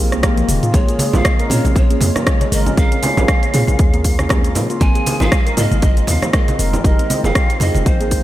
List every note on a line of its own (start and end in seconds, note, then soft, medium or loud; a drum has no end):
0.00 0.14 A#1 loud
0.00 0.70 D#3 medium
0.00 6.80 G#3 medium
0.00 0.72 C4 medium
0.00 0.20 D#4 loud
0.00 6.80 F4 medium
0.00 0.20 G4 medium
0.00 0.20 G#4 loud
0.00 swell medium
0.12 0.43 C2 loud
0.12 0.23 C4 medium
0.12 cross-stick medium
0.12 closed hi-hat soft
0.12 shaker soft
0.23 0.36 A#3 loud
0.23 0.71 D#4 medium
0.23 0.71 G4 medium
0.23 0.71 G#4 loud
0.23 kick loud
0.23 cross-stick loud
0.23 closed hi-hat medium
0.23 shaker soft
0.38 closed hi-hat soft
0.38 high tom medium
0.38 shaker soft
0.49 0.58 D#1 loud
0.49 open hi-hat medium
0.49 mid tom medium
0.49 shaker medium
0.63 0.73 F4 medium
0.63 closed hi-hat soft
0.63 mid tom medium
0.63 shaker soft
0.73 0.84 A#1 loud
0.73 4.77 C#3 medium
0.73 4.77 A#3 medium
0.73 1.10 A#3 medium
0.73 0.82 A#3 medium
0.73 1.10 C#4 medium
0.73 1.10 G#4 loud
0.73 1.15 C#5 loud
0.73 kick loud
0.73 closed hi-hat medium
0.73 shaker medium
0.89 0.98 G#4 medium
0.89 closed hi-hat soft
0.89 shaker soft
0.99 open hi-hat medium
0.99 high conga loud
0.99 shaker medium
1.13 1.21 A#1 loud
1.13 1.48 C4 medium
1.13 1.48 C#4 medium
1.13 1.48 G#4 medium
1.13 1.51 F5 loud
1.13 low conga loud
1.13 shaker soft
1.25 1.33 G#3 medium
1.25 kick loud
1.25 cross-stick loud
1.25 closed hi-hat medium
1.25 shaker medium
1.39 1.49 A#4 medium
1.39 closed hi-hat soft
1.39 shaker soft
1.49 1.60 A#2 medium
1.49 1.64 A#3 medium
1.49 1.87 C4 medium
1.49 1.87 C#4 medium
1.49 1.87 G#4 medium
1.49 1.74 C#5 loud
1.49 open hi-hat medium
1.49 high conga medium
1.49 shaker loud
1.65 1.95 A#1 loud
1.65 closed hi-hat soft
1.65 high conga medium
1.65 shaker soft
1.75 2.53 C#5 loud
1.75 kick loud
1.75 closed hi-hat medium
1.75 high conga medium
1.75 shaker soft
1.90 2.24 A#3 loud
1.90 2.24 C#4 medium
1.90 2.24 G#4 loud
1.90 closed hi-hat soft
1.90 shaker soft
2.01 2.11 F2 medium
2.01 open hi-hat medium
2.01 high conga loud
2.01 shaker medium
2.16 2.25 A#3 medium
2.16 cross-stick medium
2.16 closed hi-hat soft
2.16 low conga medium
2.16 shaker soft
2.27 2.34 G#3 medium
2.27 2.75 C4 medium
2.27 2.75 C#4 medium
2.27 2.75 G#4 medium
2.27 kick loud
2.27 cross-stick loud
2.27 closed hi-hat medium
2.27 shaker medium
2.41 closed hi-hat soft
2.41 high conga medium
2.41 shaker soft
2.51 2.70 G#1 medium
2.51 2.65 A#4 medium
2.51 2.78 D#5 loud
2.51 open hi-hat medium
2.51 shaker loud
2.66 2.76 C#4 medium
2.66 closed hi-hat soft
2.66 low conga medium
2.66 shaker soft
2.77 2.87 A#1 loud
2.77 3.14 C4 medium
2.77 3.14 C#4 medium
2.77 3.14 G#4 loud
2.77 2.90 A#4 medium
2.77 4.30 F5 loud
2.77 kick loud
2.77 closed hi-hat medium
2.77 shaker medium
2.92 3.01 C#4 medium
2.92 closed hi-hat soft
2.92 shaker soft
3.03 3.16 C#4 loud
3.03 open hi-hat medium
3.03 high conga loud
3.03 shaker medium
3.17 3.25 A#1 loud
3.17 3.51 C4 medium
3.17 3.51 C#4 medium
3.17 3.51 G#4 medium
3.17 low conga loud
3.17 shaker soft
3.28 kick loud
3.28 cross-stick loud
3.28 closed hi-hat medium
3.28 shaker medium
3.43 closed hi-hat soft
3.43 shaker soft
3.54 3.64 A#2 medium
3.54 3.90 C4 medium
3.54 3.90 C#4 medium
3.54 3.67 C#4 medium
3.54 3.90 G#4 medium
3.54 open hi-hat medium
3.54 high conga loud
3.54 shaker loud
3.67 3.76 A#1 loud
3.67 closed hi-hat soft
3.67 high conga medium
3.67 shaker soft
3.79 4.57 D#2 medium
3.79 kick loud
3.79 closed hi-hat medium
3.79 shaker medium
3.93 4.03 A#3 loud
3.93 4.27 C4 loud
3.93 4.27 C#4 medium
3.93 4.27 G#4 loud
3.93 closed hi-hat soft
3.93 shaker soft
4.04 kick medium
4.04 open hi-hat medium
4.04 shaker loud
4.19 4.30 C#4 medium
4.19 cross-stick medium
4.19 closed hi-hat soft
4.19 high conga medium
4.19 shaker soft
4.29 4.43 A#3 loud
4.29 4.78 C4 medium
4.29 4.78 C#4 medium
4.29 4.78 G#4 medium
4.29 kick loud
4.29 cross-stick loud
4.29 closed hi-hat medium
4.29 low conga loud
4.29 shaker medium
4.44 closed hi-hat soft
4.44 shaker soft
4.55 4.65 A#2 loud
4.55 open hi-hat medium
4.55 high conga medium
4.55 low conga loud
4.55 shaker loud
4.70 4.80 F4 medium
4.70 closed hi-hat soft
4.70 shaker soft
4.80 4.91 G#1 loud
4.80 8.23 D#3 medium
4.80 4.89 A#3 medium
4.80 5.17 C4 loud
4.80 8.23 C4 medium
4.80 5.17 F4 medium
4.80 5.17 A#4 loud
4.80 5.22 G#5 loud
4.80 kick loud
4.80 closed hi-hat medium
4.80 shaker medium
4.95 5.05 G#4 medium
4.95 closed hi-hat soft
4.95 shaker soft
5.06 open hi-hat medium
5.06 high conga loud
5.06 shaker medium
5.20 5.28 G#1 loud
5.20 5.54 C4 medium
5.20 5.55 F4 medium
5.20 5.54 A#4 medium
5.20 5.58 F5 loud
5.20 low conga loud
5.20 shaker soft
5.32 5.39 G#3 medium
5.32 kick loud
5.32 cross-stick loud
5.32 closed hi-hat medium
5.32 shaker medium
5.46 5.56 A#4 medium
5.46 closed hi-hat soft
5.46 shaker soft
5.57 5.67 G#2 medium
5.57 5.71 A#3 medium
5.57 5.93 C4 medium
5.57 5.93 F4 medium
5.57 5.94 A#4 medium
5.57 5.81 D#5 loud
5.57 open hi-hat medium
5.57 high conga loud
5.57 shaker loud
5.71 6.02 G#1 loud
5.71 closed hi-hat soft
5.71 high conga medium
5.71 shaker soft
5.82 6.09 D#5 loud
5.82 kick loud
5.82 closed hi-hat medium
5.82 high conga medium
5.82 shaker medium
5.97 6.31 C4 loud
5.97 6.31 F4 medium
5.97 6.31 A#4 loud
5.97 closed hi-hat soft
5.97 shaker soft
6.07 6.18 D#2 medium
6.07 6.33 F5 loud
6.07 open hi-hat medium
6.07 high conga loud
6.07 shaker loud
6.22 6.32 A#3 medium
6.22 cross-stick medium
6.22 closed hi-hat soft
6.22 low conga medium
6.22 shaker soft
6.33 6.41 G#3 medium
6.33 6.82 C4 medium
6.33 6.82 F4 medium
6.33 6.82 A#4 loud
6.33 6.81 D#5 medium
6.33 kick loud
6.33 cross-stick loud
6.33 closed hi-hat medium
6.33 shaker medium
6.48 closed hi-hat soft
6.48 high conga medium
6.48 shaker soft
6.59 6.77 F1 medium
6.59 6.72 A#4 medium
6.59 open hi-hat medium
6.59 shaker loud
6.73 6.83 C4 medium
6.73 closed hi-hat soft
6.73 low conga medium
6.73 shaker soft
6.84 6.94 F1 loud
6.84 8.23 G#3 medium
6.84 7.21 D#4 medium
6.84 8.23 F4 medium
6.84 7.21 G4 medium
6.84 7.21 G#4 loud
6.84 6.97 A#4 medium
6.84 7.25 D#5 loud
6.84 kick loud
6.84 closed hi-hat medium
6.84 shaker medium
6.99 7.08 C4 medium
6.99 closed hi-hat soft
6.99 shaker soft
7.10 7.23 C4 loud
7.10 open hi-hat medium
7.10 high conga loud
7.10 shaker medium
7.24 7.31 F1 loud
7.24 7.58 D#4 medium
7.24 7.58 G4 medium
7.24 7.58 G#4 medium
7.24 7.62 F5 loud
7.24 low conga loud
7.24 shaker soft
7.35 kick loud
7.35 cross-stick loud
7.35 closed hi-hat medium
7.35 shaker medium
7.50 closed hi-hat soft
7.50 shaker soft
7.60 7.70 F2 medium
7.60 7.74 C4 medium
7.60 7.97 D#4 medium
7.60 7.97 G4 medium
7.60 7.97 G#4 medium
7.60 7.85 D#5 medium
7.60 open hi-hat medium
7.60 high conga loud
7.60 shaker loud
7.75 7.82 F1 loud
7.75 closed hi-hat soft
7.75 high conga medium
7.75 shaker soft
7.86 8.23 A#1 medium
7.86 8.23 C5 medium
7.86 kick loud
7.86 closed hi-hat medium
7.86 shaker medium
8.00 8.10 A#3 loud
8.00 8.23 D#4 medium
8.00 8.23 G4 medium
8.00 8.23 G#4 loud
8.00 closed hi-hat soft
8.00 shaker soft
8.11 kick medium
8.11 open hi-hat medium
8.11 shaker loud